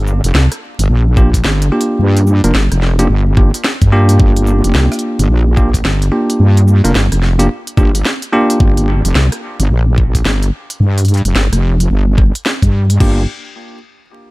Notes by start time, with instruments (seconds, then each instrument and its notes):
Already playing: wobble bass G1
0.07 shaker
0.23 wobble bass F1, closed hi-hat
0.34 wobble bass C2, snare
0.52 cross-stick, closed hi-hat
0.79 wobble bass G1, closed hi-hat
0.89 wobble bass A#1
1.17 tine electric piano A#3 D4 F4 G4, kick, shaker
1.34 kick, closed hi-hat
1.44 wobble bass G1, snare
1.62 closed hi-hat
1.72 tine electric piano A#3 D4 F4 G4
1.81 closed hi-hat
1.99 wobble bass G2
2.17 closed hi-hat
2.27 shaker
2.44 wobble bass F1, tine electric piano A#3 D4 F4 A#4, closed hi-hat
2.55 wobble bass G1, snare
2.72 wobble bass F1, cross-stick, closed hi-hat
2.82 snare
2.99 tine electric piano A#3 D4 F4 G4, closed hi-hat
3.09 wobble bass G1
3.37 tine electric piano A#3 D4 F4 G4, kick, cross-stick
3.54 closed hi-hat, shaker
3.64 snare
3.82 wobble bass G2, kick, closed hi-hat
3.92 tine electric piano A#3 D4 F4 G4
4.09 closed hi-hat
4.20 wobble bass G1, kick
4.37 closed hi-hat
4.47 shaker
4.64 wobble bass F1, closed hi-hat
4.74 wobble bass C2, snare
4.92 cross-stick, closed hi-hat
4.93 closed hi-hat
4.99 closed hi-hat
5.19 wobble bass G1, closed hi-hat
5.29 wobble bass A#1
5.57 tine electric piano A#3 D4 F4 G4, kick, shaker
5.74 kick, closed hi-hat
5.85 wobble bass G1, snare
6.02 closed hi-hat
6.12 tine electric piano A#3 D4 F4 G4
6.30 closed hi-hat
6.40 wobble bass G2
6.57 closed hi-hat
6.68 shaker
6.84 wobble bass F1, tine electric piano A#3 D4 F4 A#4, closed hi-hat
6.95 wobble bass G1, snare
7.12 wobble bass F1, cross-stick, closed hi-hat
7.22 snare
7.39 tine electric piano A#3 D4 F4 G4, closed hi-hat
7.67 closed hi-hat
7.77 wobble bass G1, tine electric piano A#3 D4 F4 G4, kick, cross-stick, shaker
7.95 closed hi-hat
8.05 snare
8.22 closed hi-hat
8.33 tine electric piano A#3 D4 F4 G4
8.50 closed hi-hat
8.60 wobble bass G1, kick
8.77 closed hi-hat
9.05 wobble bass F1, closed hi-hat
9.15 wobble bass C2, snare
9.32 cross-stick, closed hi-hat
9.60 wobble bass G1, closed hi-hat
9.70 wobble bass A#1
9.98 kick
10.15 kick, closed hi-hat
10.25 wobble bass G1, snare
10.42 closed hi-hat
10.70 closed hi-hat
10.80 wobble bass G2
10.98 closed hi-hat
11.05 closed hi-hat
11.08 closed hi-hat
11.14 closed hi-hat
11.17 closed hi-hat
11.25 wobble bass F1, closed hi-hat
11.35 wobble bass G1, snare
11.52 wobble bass F1, cross-stick, closed hi-hat
11.80 closed hi-hat
11.90 wobble bass G1
12.18 kick, cross-stick
12.35 closed hi-hat
12.46 snare
12.62 wobble bass G2, kick, closed hi-hat
12.90 closed hi-hat
13.00 wobble bass G1, tine electric piano A#3 D4 F4 G4, kick, crash